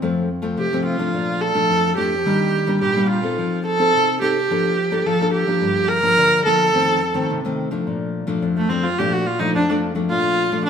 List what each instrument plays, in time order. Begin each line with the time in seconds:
0.02 nylon-string guitar F2 F3 A3 C4
0.42 nylon-string guitar F3 A3 C4
0.58 nylon-string guitar C3, viola G4
0.73 nylon-string guitar F3 A3 C4
0.85 viola F4
0.99 nylon-string guitar F3 A3 D4
1.13 nylon-string guitar A#2
1.41 viola A4
1.54 nylon-string guitar F3 A3 D4
1.69 nylon-string guitar F2
1.96 nylon-string guitar F3 A3 D4, viola G4
2.26 nylon-string guitar D#3 G3 A#3 D4
2.67 nylon-string guitar G3 A#3 D4
2.81 nylon-string guitar A#2, viola G4
2.96 nylon-string guitar G3 A#3 D4
3.10 viola F4
3.22 nylon-string guitar C4 D#4 A4
3.38 nylon-string guitar F3
3.66 viola A4
3.79 nylon-string guitar C4 D#4 A4
3.94 nylon-string guitar C3
4.21 nylon-string guitar C4 D#4 A4, viola G4
4.51 nylon-string guitar F3 A#3 D4 A4
4.91 nylon-string guitar A#3 D4 A4
5.06 nylon-string guitar F3, viola A4
5.21 nylon-string guitar A#3 D4 A4
5.33 viola G4
5.47 nylon-string guitar F3 A#3 D4
5.61 nylon-string guitar G2
5.89 viola A#4
6.03 nylon-string guitar F3 A#3 D4
6.18 nylon-string guitar D3
6.45 nylon-string guitar F3 A#3 D4, viola A4
6.74 nylon-string guitar F2 D#3 A3 C4
7.14 nylon-string guitar D#3 A3 C4
7.30 nylon-string guitar C3
7.45 nylon-string guitar D#3 A3 C4
7.71 nylon-string guitar F3 A3 D4
7.87 nylon-string guitar A#2
8.27 nylon-string guitar F3 A3 D4
8.42 nylon-string guitar F2
8.57 viola A3
8.69 nylon-string guitar F3 A3 D4, viola C4
8.84 viola F4
8.98 nylon-string guitar A#2 F3 A3 D4, viola G4
9.13 viola F#4
9.26 viola F4
9.40 nylon-string guitar F3 A3 D4, viola D#4
9.55 nylon-string guitar F2, viola D4
9.70 nylon-string guitar F3 A3 D4
9.95 nylon-string guitar F3 A3 D4
10.10 nylon-string guitar A#2, viola F4
10.52 nylon-string guitar F3 A3 D4
10.65 viola D4